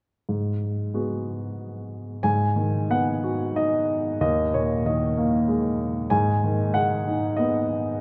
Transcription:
0.29 2.20 G#2 soft
0.94 2.20 G#3 soft
0.94 2.20 B3 soft
0.94 2.20 F#4 soft
2.23 4.17 G#2 medium
2.23 2.92 G#5 medium
2.56 3.83 D#3 soft
2.90 4.17 B3 soft
2.90 3.58 F#5 medium
3.24 4.18 F#4 soft
3.55 4.18 D#4 soft
3.55 4.20 D#5 medium
4.21 6.08 D#2 medium
4.21 4.54 D#5 medium
4.54 5.76 A#2 soft
4.54 4.87 C#5 medium
4.86 6.08 D#3 soft
4.86 5.76 D#5 medium
5.17 6.09 A#3 soft
5.48 6.10 G#3 soft
6.10 7.98 G#2 medium
6.10 6.77 G#5 medium
6.44 7.67 D#3 soft
6.74 7.98 G#3 soft
6.74 7.40 F#5 medium
7.07 7.99 D#4 soft
7.37 8.00 B3 soft
7.37 8.01 D#5 medium

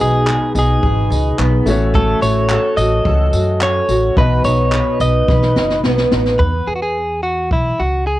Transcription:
0.00 0.34 B1 medium
0.00 1.72 B2 medium
0.00 1.62 G#3 medium
0.00 1.63 D#4 medium
0.00 0.54 D#4 medium
0.00 1.63 F#4 medium
0.00 0.26 G#4 medium
0.00 0.52 G#4 medium
0.00 1.64 B4 medium
0.27 0.81 G#4 medium
0.27 clap loud
0.55 0.83 B1 medium
0.55 1.10 D#4 medium
0.55 1.36 G#4 medium
0.55 tambourine medium
0.83 1.06 G#1 medium
0.83 1.72 G#4 medium
0.83 kick loud
1.10 1.33 C#2 medium
1.10 1.72 D#4 medium
1.10 tambourine medium
1.38 1.61 B1 medium
1.38 1.72 B3 medium
1.38 clap loud
1.66 2.12 A1 medium
1.66 3.85 A3 medium
1.66 1.93 A3 medium
1.66 3.85 C#4 medium
1.66 3.86 F#4 medium
1.66 tambourine medium
1.70 3.87 C#5 medium
1.94 4.17 A3 medium
1.94 2.49 A4 medium
1.94 2.22 A4 medium
1.94 kick loud
2.21 2.56 A1 medium
2.21 2.78 F#4 medium
2.21 2.77 C#5 loud
2.21 tambourine medium
2.49 3.05 A4 medium
2.49 clap loud
2.77 3.00 A1 medium
2.77 3.33 F#4 medium
2.77 3.62 D#5 loud
2.77 tambourine medium
3.05 3.28 C#2 loud
3.05 4.17 A4 medium
3.05 kick loud
3.33 3.79 F#2 medium
3.33 3.88 F#4 medium
3.33 tambourine medium
3.61 4.22 C#4 medium
3.61 4.18 C#5 loud
3.61 clap loud
3.88 4.11 A1 medium
3.88 4.44 F#4 medium
3.88 tambourine medium
4.16 4.40 B1 medium
4.16 6.40 B2 medium
4.16 6.35 B3 medium
4.16 6.36 D#4 medium
4.16 6.37 F#4 medium
4.16 4.73 B4 medium
4.16 4.44 B4 medium
4.16 kick loud
4.20 6.37 D#5 medium
4.44 4.79 B1 medium
4.44 5.00 D#4 medium
4.44 5.01 C#5 medium
4.44 tambourine medium
4.72 5.28 B4 medium
4.72 clap loud
5.00 5.23 B1 medium
5.00 5.55 D#4 medium
5.00 5.80 D#5 medium
5.00 tambourine medium
5.28 5.51 B1 medium
5.28 6.95 B4 medium
5.28 kick loud
5.28 snare medium
5.42 snare medium
5.56 5.79 F#1 medium
5.56 6.11 D#4 medium
5.56 snare medium
5.70 snare medium
5.83 6.06 B1 medium
5.83 6.95 B3 medium
5.83 snare medium
5.98 snare medium
6.11 6.35 A1 medium
6.11 6.45 D#4 medium
6.11 snare loud
6.26 snare medium
6.39 6.62 E2 medium
6.39 6.68 B4 medium
6.39 kick medium
6.67 7.47 E2 medium
6.67 6.74 G#4 medium
6.76 6.82 F#4 medium
6.82 7.21 G#4 medium
7.23 7.49 F#4 medium
7.51 7.74 B1 medium
7.51 7.81 E4 medium
7.51 kick medium
7.79 8.20 C#2 medium
7.79 8.05 F#4 medium
8.07 8.20 G#4 medium

